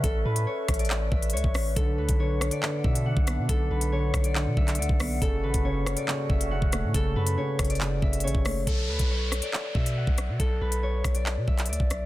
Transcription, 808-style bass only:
\new Staff \with { instrumentName = "808-style bass" } { \clef bass \time 4/4 \key b \minor \tempo 4 = 139 a,,8 a,8 r8 a,,4 a,,8 cis,16 a,,16 a,,8 | b,,8 d,16 b,,4 r8. b,8. b,,8 b,16 | b,,8 b,,4 b,,8. b,16 b,,8 d,16 b,,16 b,,8 | fis,,8 a,,16 fis,,4 r8. fis,,8. e,,8 a,16 |
fis,,8 fis,8 r8 fis,,4 fis,,8 a,,16 fis,,16 fis,,8 | b,,8 d,16 b,,4 r8. b,8. b,,8 b,16 | b,,8 b,,4 b,,8. b,16 b,,8 d,16 b,,16 b,,8 | }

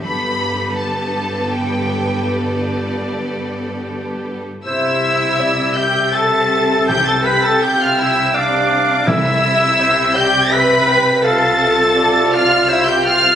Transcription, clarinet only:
\new Staff \with { instrumentName = "Clarinet" } { \time 3/4 \key g \mixolydian \tempo 4 = 82 r2. | r2. | \key c \major c''4 d''8 e''4. | g''2 f''4 |
e''4 c''8 d''8 e''8 g''8 | f''8 r8 d''4 c''4 | }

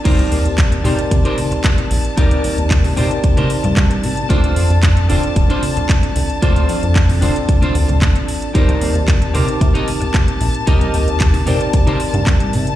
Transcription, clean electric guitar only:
\new Staff \with { instrumentName = "Clean electric guitar" } { \time 4/4 \key c \dorian \tempo 4 = 113 <ees' g' bes' c''>8. r8. <ees' g' bes' c''>16 r8 <ees' g' bes' c''>16 r4. | <ees' g' bes' d''>8. r8. <ees' g' bes' c''>16 r8 <ees' g' bes' c''>16 r4. | <d' f' a' c''>8. r8. <d' f' a' c''>16 r8 <d' f' a' c''>16 r4. | <d' f' a' c''>8. r8. <d' f' a' c''>16 r8 <d' f' a' c''>16 r4. |
<ees' g' bes' c''>8. r8. <ees' g' bes' c''>16 r8 <ees' g' bes' ees''>16 r4. | <ees' g' bes' ees''>8. r8. <ees' g' bes' c''>16 r8 <ees' g' bes' c''>16 r4. | }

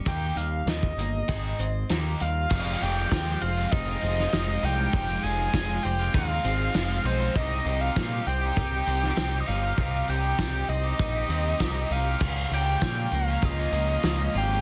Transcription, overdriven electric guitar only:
\new Staff \with { instrumentName = "Overdriven electric guitar" } { \time 4/4 \key f \minor \tempo 4 = 99 <bes ees' g'>8 <bes ees'>8 <bes ees'>8 <bes ees'>8 <c' ees' aes'>8 <c' ees'>8 <bes ees' g'>8 <bes ees'>8 | <f aes c' f'>8 <f aes c' f'>8 <f aes c' f'>16 <aes c' f'>8 <aes c' f'>8 <aes c' f'>16 <f aes c' f'>16 <aes c' f'>16 <f aes c' f'>16 <aes c' f'>8 <aes c' f'>16 | <f aes c' f'>8 <f aes c' f'>8 <f aes c' f'>16 <aes c' f'>8 <aes c' f'>8 <aes c' f'>16 <f aes c' f'>16 <aes c' f'>16 <f aes c' f'>16 <aes c' f'>8 <aes c' f'>16 | <c' ees' g'>8 <c' ees' g'>8 <c' ees' g'>16 <ees' g'>8 <ees' g'>8 <ees' g'>16 <c' ees' g'>16 <ees' g'>16 <c' ees' g'>16 <ees' g'>8 <ees' g'>16 |
<c' ees' g'>8 <c' ees' g'>8 <c' ees' g'>16 <ees' g'>8 <ees' g'>8 <ees' g'>16 <c' ees' g'>16 <ees' g'>16 <c' ees' g'>16 <ees' g'>8 <ees' g'>16 | <f bes des' f'>8 <f bes des' f'>8 <f bes des' f'>16 <bes des' f'>8 <bes des' f'>8 <bes des' f'>16 <f bes des' f'>16 <bes des' f'>16 <f bes des' f'>16 <bes des' f'>8 <bes des' f'>16 | }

